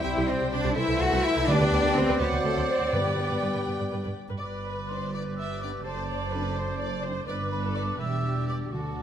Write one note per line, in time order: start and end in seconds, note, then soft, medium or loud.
0.00 0.73 G3 medium
0.00 0.78 G3 medium
0.00 0.76 C4 medium
0.00 0.78 G4 medium
0.00 1.47 C5 medium
0.00 1.50 C5 medium
0.00 0.11 E5 medium
0.00 0.71 G5 medium
0.04 0.09 C2 medium
0.04 0.28 E4 medium
0.04 0.09 G4 medium
0.04 0.28 E5 medium
0.16 0.22 C2 medium
0.16 0.21 G4 soft
0.27 0.34 C2 medium
0.27 0.53 C4 medium
0.27 0.33 G4 medium
0.27 0.35 C5 medium
0.27 0.51 C5 medium
0.40 0.46 C2 medium
0.40 0.45 G4 medium
0.51 0.57 C2 medium
0.51 0.77 D4 loud
0.51 0.57 G4 medium
0.51 0.75 D5 medium
0.64 0.69 C2 medium
0.64 0.69 G4 medium
0.76 0.81 C2 medium
0.76 1.48 E3 medium
0.76 1.49 A3 medium
0.76 1.01 E4 loud
0.76 1.49 E4 medium
0.76 0.81 A4 medium
0.76 1.48 A4 medium
0.76 1.00 E5 medium
0.76 1.48 E5 medium
0.87 0.93 C2 medium
0.87 0.92 A4 medium
0.99 1.05 C2 medium
0.99 1.25 F#4 loud
0.99 1.04 A4 loud
0.99 1.24 F#5 loud
0.99 1.23 F#5 medium
1.11 1.17 C2 medium
1.11 1.16 A4 medium
1.23 1.48 E4 loud
1.23 1.29 E5 medium
1.23 1.48 E5 loud
1.35 1.41 C2 medium
1.35 1.40 A4 medium
1.47 1.54 D2 loud
1.47 2.16 D3 medium
1.47 2.21 G3 medium
1.47 2.17 B3 medium
1.47 1.96 D4 loud
1.47 2.17 G4 medium
1.47 1.59 B4 medium
1.47 2.23 B4 medium
1.47 1.73 D5 loud
1.47 1.95 D5 loud
1.47 4.17 D5 medium
1.47 2.20 G5 medium
1.60 1.65 D2 medium
1.60 1.65 B4 medium
1.72 1.76 D2 medium
1.72 1.77 B4 medium
1.83 1.88 D2 medium
1.83 1.89 B4 medium
1.95 2.00 D2 loud
1.95 2.20 C4 loud
1.95 2.00 B4 medium
1.95 2.22 C5 medium
1.95 2.20 C5 medium
2.08 2.13 D2 medium
2.08 2.13 B4 medium
2.19 2.24 D2 medium
2.19 2.95 F#3 medium
2.19 2.28 B3 loud
2.19 2.93 C4 medium
2.19 2.94 F#4 medium
2.19 2.44 B4 medium
2.19 2.45 B4 medium
2.19 2.25 C5 medium
2.19 2.95 C5 medium
2.19 4.21 D5 medium
2.19 2.92 F#5 medium
2.31 2.36 D2 medium
2.31 2.37 C5 medium
2.43 2.48 D2 medium
2.43 2.68 A3 medium
2.43 2.71 A4 medium
2.43 2.69 A4 medium
2.43 2.49 C5 medium
2.55 2.60 D2 medium
2.55 2.61 C5 medium
2.68 2.92 C4 medium
2.68 2.93 C5 medium
2.68 2.92 C5 medium
2.79 2.84 D2 medium
2.79 2.85 C5 medium
2.92 2.97 G2 medium
2.92 3.63 G2 medium
2.92 4.17 G3 medium
2.92 4.16 B3 medium
2.92 3.67 B3 medium
2.92 4.14 G4 medium
2.92 3.65 B4 medium
2.92 2.98 B4 medium
2.92 3.67 B4 medium
2.92 4.17 B4 medium
2.92 4.21 G5 medium
3.04 3.09 G2 soft
3.04 3.11 B4 soft
3.16 3.21 G2 soft
3.16 3.22 B4 soft
3.29 3.34 G2 soft
3.29 3.34 B4 soft
3.40 3.46 G2 medium
3.40 3.47 B4 medium
3.54 3.59 G2 soft
3.54 3.59 B4 soft
3.66 3.71 G2 soft
3.66 3.72 B4 soft
3.78 3.83 G2 soft
3.78 3.84 B4 soft
3.91 3.96 G2 medium
3.91 3.97 B4 medium
4.04 4.09 G2 soft
4.04 4.09 B4 soft
4.28 4.33 G2 soft
4.28 4.34 B4 soft
4.39 5.81 G1 soft
4.39 5.82 G2 soft
4.39 5.09 B4 soft
4.39 5.10 B4 soft
4.39 4.47 D5 soft
4.39 5.09 D5 soft
4.39 4.63 D5 soft
4.39 4.46 D6 medium
4.64 4.90 B4 soft
4.64 4.89 B4 soft
4.64 4.90 B5 medium
4.89 4.98 B3 soft
4.89 4.98 D4 soft
4.89 5.13 C5 soft
4.89 5.14 D5 soft
4.89 5.13 C6 medium
5.13 5.86 G4 soft
5.13 5.84 B4 soft
5.13 5.38 B4 soft
5.13 5.84 D5 soft
5.13 5.22 D5 medium
5.13 5.20 D6 medium
5.36 5.61 D5 soft
5.36 5.62 E5 medium
5.36 5.63 E6 medium
5.61 5.70 B3 medium
5.61 5.71 D4 medium
5.61 5.86 B4 soft
5.61 5.71 D5 medium
5.61 5.84 D6 medium
5.84 7.25 F#1 medium
5.84 7.25 F#2 medium
5.84 7.02 A4 medium
5.84 6.09 C5 medium
5.84 7.25 C5 medium
5.84 7.24 D5 medium
5.84 6.08 D5 soft
5.84 7.01 A5 medium
6.08 6.33 C5 soft
6.08 6.32 D5 medium
6.32 6.41 C4 medium
6.32 6.42 D4 medium
6.32 6.56 B4 medium
6.32 6.56 D5 medium
6.56 6.80 C5 medium
6.56 6.81 C5 medium
6.79 7.03 D5 medium
6.79 7.03 D5 soft
7.04 7.12 C4 medium
7.04 7.12 D4 medium
7.04 7.28 C5 medium
7.27 7.96 G1 medium
7.27 7.96 G2 medium
7.27 7.95 B3 medium
7.27 7.95 D4 medium
7.27 7.98 B4 medium
7.27 7.61 B4 medium
7.27 8.02 B4 medium
7.27 7.95 D5 medium
7.27 7.36 D5 medium
7.27 7.50 D6 medium
7.51 7.61 B4 medium
7.51 7.77 B5 medium
7.63 7.99 A4 soft
7.75 7.83 D5 medium
7.75 7.99 D6 medium
7.99 8.73 E1 medium
7.99 8.73 E2 soft
7.99 8.73 G3 soft
7.99 8.72 D4 soft
7.99 8.71 G4 medium
7.99 8.73 G4 soft
7.99 8.72 D5 soft
7.99 8.48 E5 medium
7.99 8.48 E6 medium
8.49 8.57 D5 soft
8.49 8.55 D6 medium
8.72 9.03 D2 soft
8.72 9.03 D3 medium
8.72 9.03 F#3 soft
8.72 9.03 D4 soft
8.72 9.03 F#4 soft
8.72 9.03 A4 soft
8.72 9.03 D5 soft
8.72 9.03 A5 medium